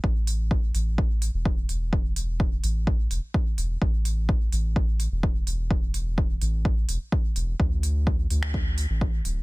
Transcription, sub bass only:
X:1
M:4/4
L:1/16
Q:1/4=127
K:Ddor
V:1 name="Sub bass" clef=bass
A,,,6 A,,,4- A,,, E,,,3 E,,,2- | E,,,6 A,,,4 E,,, z3 E,,,2 | A,,,6 A,,,4- A,,, E,,,3 E,,,2- | E,,,6 A,,,4 E,,, z3 E,,,2 |
D,,6 D,,4- D,, A,,,3 D,,,2 |]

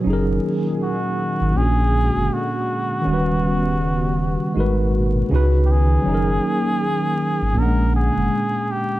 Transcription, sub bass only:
X:1
M:4/4
L:1/16
Q:"Swing 16ths" 1/4=80
K:F#
V:1 name="Sub bass" clef=bass
F,,,2 z4 z G,,, A,,,3 F,,, z4 | D,,,6- D,,, z G,,,4 C,,4 | F,,,2 z4 z G,,, A,,,3 F,,, z4 |]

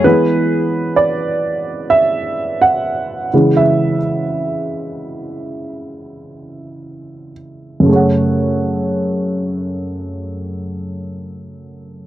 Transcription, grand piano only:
X:1
M:4/4
L:1/16
Q:1/4=59
K:F#m
V:1 name="Grand piano"
B4 d4 e3 f4 e- | e12- e2 z2 | z16 |]
V:2 name="Grand piano" clef=bass
[E,G,B,]12- [E,G,B,]2 [C,E,G,]2 | z16 | [F,,C,A,Gcf]16 |]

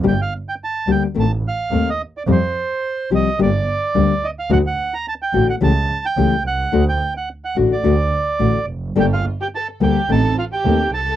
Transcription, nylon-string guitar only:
X:1
M:4/4
L:1/8
Q:1/4=108
K:Gm
V:1 name="Nylon-string guitar"
[D,G,B,DG] z2 [D,G,B,DG] [E,A,C] z [E,A,C] z | [F,G,CG] z2 [F,G,CG] [D,G,B,DG] z [D,G,B,DG] z | [D,A,D^F] z2 [D,A,DF] [^C,=E,A,^CG] z [C,E,A,CG] z | [D,A,D^F] z2 [D,A,DF] [D,A,DF] z [D,A,DF] z |
[D,G,B,DA] z2 [D,G,B,DA] [E,A,C] z [E,A,C] z |]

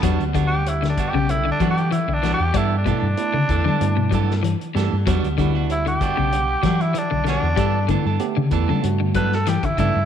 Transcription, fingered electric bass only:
X:1
M:4/4
L:1/16
Q:"Swing 16ths" 1/4=95
K:Edor
V:1 name="Fingered electric bass" clef=bass
E,, D,,6 B,,,3 E,3 B,,,2 E,, | G,,3 G,, z C, E,, G, G,,6 G,, G,, | E,, D,,6 B,,,3 E,3 B,,,2 E,, | G,,3 G,, z C, E,, G, G,,6 G,, G,, |]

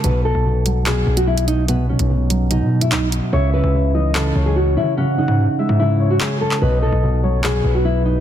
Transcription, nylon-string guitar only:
X:1
M:4/4
L:1/16
Q:1/4=146
K:Bmix
V:1 name="Nylon-string guitar"
B2 A6 G3 F E2 D2 | B,2 C6 D3 E D2 z2 | c2 B6 A3 G F2 E2 | C2 D6 E3 F G2 A2 |
B2 A6 G3 F E2 D2 |]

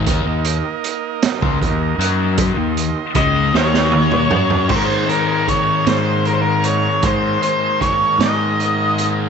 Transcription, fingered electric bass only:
X:1
M:6/8
L:1/16
Q:3/8=52
K:Ebmix
V:1 name="Fingered electric bass" clef=bass
E,, E,,2 z4 D,, E,,2 _G,,2- | _G,, E,,2 z D,,2 E,,4 G,,2 | [K:Ab] A,,2 z4 A,,6 | A,,2 z4 A,,6 |]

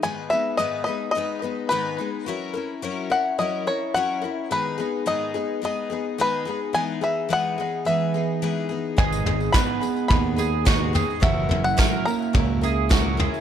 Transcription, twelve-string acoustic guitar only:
X:1
M:4/4
L:1/8
Q:1/4=107
K:G#m
V:1 name="Twelve-string acoustic guitar"
[G,,D,G,B,DB] [G,B,DB] [G,,D,G,B,DB] [G,B,DB] [G,B,DB] [G,B,DB] [G,,D,G,B,DB] [G,B,DB] | [F,CEA] [CEA] [F,CEA] [CEA] [F,CEA] [CEA] [F,CEA] [CEA] | [G,,D,G,B,DG] [G,B,DG] [G,,D,G,B,DG] [G,B,DG] [G,B,DG] [G,B,DG] [G,,D,G,B,DG] [G,B,DG] | [E,G,B,DG] [B,DG] [E,G,B,DG] [B,DG] [G,B,DG] [B,DG] [E,G,B,DG] [B,DG] |
[G,,D,G,B,DG] [G,B,DG] [G,,D,G,B,DG] [G,B,DG] [G,B,DG] [G,B,DG] [G,,D,G,B,DG] [G,B,DG] | [F,CEA] [CEA] [F,CEA] [CEA] [F,CEA] [CEA] [F,CEA] [CEA] |]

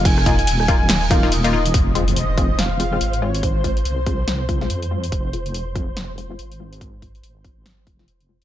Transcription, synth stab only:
X:1
M:4/4
L:1/16
Q:"Swing 16ths" 1/4=142
K:Fm
V:1 name="Synth stab"
z2 [B,EF] z3 [B,EF] z3 [B,EF] [B,EF] z [B,EF] [B,EF] z | z2 [A,CF] z3 [A,CF] z3 [A,CF] [A,CF] z2 [A,CF] z | z2 [A,CF] z3 [A,CF] z3 [A,CF] [A,CF] z2 [A,CF] z | z2 [A,CF] z3 [A,CF] z3 [A,CF] [A,CF] z2 [A,CF] z |
z2 [A,CF] z3 [A,CF] z3 [A,CF] [A,CF] z2 [A,CF] z |]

